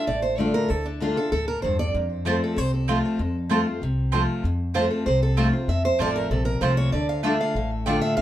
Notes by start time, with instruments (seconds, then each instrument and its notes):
0.07 upright bass A1, steel-string acoustic guitar A2 D5
0.22 steel-string acoustic guitar C5
0.38 steel-string acoustic guitar D3 A3 D4 F4 D5
0.54 steel-string acoustic guitar A#4
0.68 upright bass D2, steel-string acoustic guitar D3 A4
0.86 steel-string acoustic guitar D4
1.00 steel-string acoustic guitar D3 A3 D4 F4
1.16 steel-string acoustic guitar D4 F4 A4
1.32 upright bass D2, steel-string acoustic guitar A2 A4
1.48 steel-string acoustic guitar A#4
1.62 upright bass E2, steel-string acoustic guitar G2 C5
1.79 steel-string acoustic guitar D5
1.94 upright bass F2, steel-string acoustic guitar F2
2.25 steel-string acoustic guitar F3 A3 C4 F4 C5, mandolin C4 F4 C5 A5
2.44 steel-string acoustic guitar A4
2.57 upright bass C2, steel-string acoustic guitar C3 C5
2.74 steel-string acoustic guitar A4
2.88 steel-string acoustic guitar F3 A3 C4 F4, mandolin C4 F4 C5 A5
3.19 steel-string acoustic guitar F2, upright bass F2
3.49 steel-string acoustic guitar F3 A3 C4 F4, mandolin C4 F4 C5 A5
3.67 steel-string acoustic guitar C4 F4
3.82 upright bass C2, steel-string acoustic guitar C3
4.12 steel-string acoustic guitar F3 A3 C4 F4, mandolin C4 F4 C5 A5
4.44 upright bass F2, steel-string acoustic guitar F2
4.74 steel-string acoustic guitar F3 A3 C4 F4 C5, mandolin C4 F4 C5 A5
4.91 steel-string acoustic guitar A4
5.06 upright bass C2, steel-string acoustic guitar C3 C5
5.23 steel-string acoustic guitar A4
5.37 steel-string acoustic guitar F3 A3 C4 F4, mandolin C4 F4 C5 A5
5.53 steel-string acoustic guitar C4 F4
5.68 upright bass F2, steel-string acoustic guitar F2 E5
5.85 steel-string acoustic guitar C5
5.99 upright bass A1, steel-string acoustic guitar F3 A3 C4 F4 D5, mandolin C4 F4 C5 A5
6.16 steel-string acoustic guitar A#4
6.30 upright bass A#1, steel-string acoustic guitar C3 A4
6.45 steel-string acoustic guitar A#4
6.61 upright bass C2, steel-string acoustic guitar F3 A3 C4 F4 C5, mandolin C4 F4 C5 A5
6.77 steel-string acoustic guitar C#5
6.92 upright bass D2, steel-string acoustic guitar D3 D5
7.09 steel-string acoustic guitar F5
7.23 steel-string acoustic guitar D3 A3 D4 F4 E5, mandolin A3 F4 D5 A5
7.41 steel-string acoustic guitar F5
7.55 upright bass A1, steel-string acoustic guitar A2
7.86 steel-string acoustic guitar D3 A3 D4 F4 G5, mandolin A3 F4 D5 A5
8.01 steel-string acoustic guitar E5
8.17 upright bass D2, steel-string acoustic guitar D3 F5